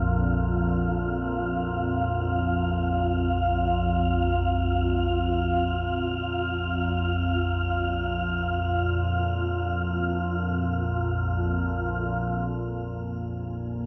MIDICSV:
0, 0, Header, 1, 4, 480
1, 0, Start_track
1, 0, Tempo, 500000
1, 13308, End_track
2, 0, Start_track
2, 0, Title_t, "Synth texture"
2, 0, Program_c, 0, 99
2, 0, Note_on_c, 0, 65, 79
2, 0, Note_on_c, 0, 77, 83
2, 11996, Note_on_c, 0, 68, 80
2, 12003, Note_on_c, 0, 80, 80
2, 12031, Note_off_c, 0, 77, 0
2, 12037, Note_off_c, 0, 65, 0
2, 13308, Note_off_c, 0, 68, 0
2, 13308, Note_off_c, 0, 80, 0
2, 13308, End_track
3, 0, Start_track
3, 0, Title_t, "Ambient pad"
3, 0, Program_c, 1, 92
3, 11998, Note_on_c, 1, 58, 70
3, 12888, Note_on_c, 1, 63, 67
3, 13308, Note_off_c, 1, 58, 0
3, 13308, Note_off_c, 1, 63, 0
3, 13308, End_track
4, 0, Start_track
4, 0, Title_t, "Synth drone"
4, 0, Program_c, 2, 95
4, 0, Note_on_c, 2, 34, 66
4, 0, Note_on_c, 2, 41, 70
4, 12005, Note_off_c, 2, 41, 0
4, 12006, Note_off_c, 2, 34, 0
4, 12016, Note_on_c, 2, 41, 71
4, 12018, Note_on_c, 2, 34, 70
4, 13308, Note_off_c, 2, 34, 0
4, 13308, Note_off_c, 2, 41, 0
4, 13308, End_track
0, 0, End_of_file